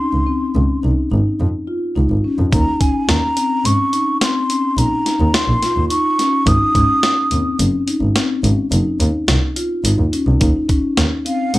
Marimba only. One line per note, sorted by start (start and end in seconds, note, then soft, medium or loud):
0.00 0.19 D#4 medium
0.26 0.47 C4 medium
0.55 0.76 C#4 medium
0.83 1.04 D#4 medium
1.11 1.52 D#4 medium
1.67 1.88 F4 medium
1.96 2.16 D#4 medium
2.24 2.45 C#4 medium
2.52 2.73 D#4 medium
2.80 3.21 C#4 medium
3.37 3.57 C4 medium
3.65 3.85 C#4 medium
3.93 4.14 D#4 medium
4.21 4.42 C4 medium
4.50 4.70 C#4 medium
4.77 4.98 D#4 medium
5.05 5.47 D#4 medium
5.62 5.82 F4 medium
5.90 6.11 D#4 medium
6.19 6.39 C#4 medium
6.47 6.67 D#4 medium
6.75 7.16 C#4 medium
7.32 7.52 C4 medium
7.59 7.80 C#4 medium
7.87 8.08 D#4 medium
8.15 8.36 C4 medium
8.43 8.64 C#4 medium
8.72 8.93 D#4 medium
9.00 9.41 D#4 medium
9.56 9.77 F4 medium
9.84 10.05 D#4 medium
10.13 10.33 C#4 medium
10.40 10.61 D#4 medium
10.69 11.10 C#4 medium
11.25 11.46 C4 medium
11.54 11.59 C#4 medium